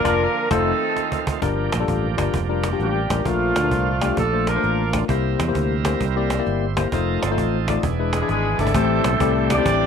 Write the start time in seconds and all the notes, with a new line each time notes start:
Already playing: D3 F3 A#3 F4
0.04 F1 A#3 D4 F4 A#4 D5, cajon bass, cajon slap
0.51 F1 D#3 A3 C4 D#4 F4 A4 C5, cajon bass, cajon slap
0.97 cajon slap
1.12 cajon bass
1.27 cajon bass
1.42 G1 G2 F3 G3 A3 D4 F4 G4 A#4, cajon bass
1.47 A#3
1.72 A#1, cajon slap
1.79 G3 D4 F4 A4
1.87 A1, cajon bass, cajon slap
2.17 G1 G3 D4 F4 A#4, cajon bass, cajon slap
2.34 F1, cajon bass
2.49 G3 D4 F4 A#4
2.63 cajon slap
2.72 G3 D4 F4 G4
2.79 A1 G3 A#3 D4 G4, cajon slap
3.10 A1 G3 D4 F4 A#4, cajon bass, cajon slap
3.25 A#1 A#2 F3 A3 D4 F4 A#4, cajon bass
3.56 D2, cajon slap
3.63 A3 D4 F4 A#4
3.71 C2, cajon bass, cajon slap
4.01 A3 D4 F4 G4, cajon bass, cajon slap
4.17 A#1 A3 D4 F4 A4, cajon bass
4.33 A3 D4 F4 C5
4.47 A#3 D4 F4 A#4, cajon slap
4.55 A3 D4 F4 C5
4.63 A1, cajon slap
4.93 A3 D4 F4 A#4, cajon bass, cajon slap
5.08 C2 C3 G3 A#3 C4 E4 G4 A#4 C5, cajon bass
5.39 E2, cajon slap
5.48 A#3 E4 G4 C5
5.54 D2, cajon bass, cajon slap
5.85 A#3 E4 G4 C5, cajon bass, cajon slap
6.01 C2, cajon bass
6.16 A#3 E4 G4 D5
6.30 cajon slap
6.39 A#3 E4 G4 D5
6.46 G1 C5, cajon slap
6.77 A#3 E4 G4 A#4 C5, cajon bass, cajon slap
6.92 F1 F3 A3 C4 D#4 F4 A4 C5, cajon bass
7.23 G1, cajon slap
7.31 A3 D#4 F4 C5
7.37 A1, cajon bass, cajon slap
7.68 A3 D#4 F4 D5, cajon bass, cajon slap
7.83 E1 E3 B3 D4 G#4, cajon bass
7.99 G#3 D4 E4 B4
8.13 G#3 G#4, cajon slap
8.22 G#3 D4 E4 D5
8.28 G#1 G#3 G#4 B4, cajon slap
8.58 G#1 G#3 A3 C4 D4 E4 A4 D5, cajon bass
8.67 cajon bass
8.74 A1 A2 E3 G3 A3 C4 E4 G4 C5, cajon bass
9.04 B1, cajon slap
9.20 C2 A3 C4 E4 G4 D5, cajon bass, cajon slap
9.50 D4 G4 D5, cajon bass, cajon slap
9.58 A3 C4 E4 G4 C5
9.66 A1, cajon bass